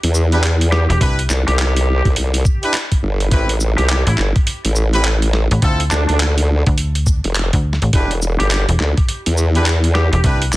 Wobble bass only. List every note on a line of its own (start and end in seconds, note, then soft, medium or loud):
0.03 0.87 E2 loud
1.30 1.45 C2 loud
1.47 2.02 C2 loud
2.05 2.43 C2 loud
3.03 3.30 G1 loud
3.32 3.75 A1 loud
3.78 4.04 C2 loud
4.18 4.33 G1 loud
4.65 5.48 A1 loud
5.91 6.06 D2 medium
6.09 6.64 D2 loud
7.24 7.50 F1 medium
7.93 8.37 E1 loud
8.40 8.66 G1 loud
8.80 8.95 D2 loud
9.26 10.10 E2 loud
10.53 10.57 C2 loud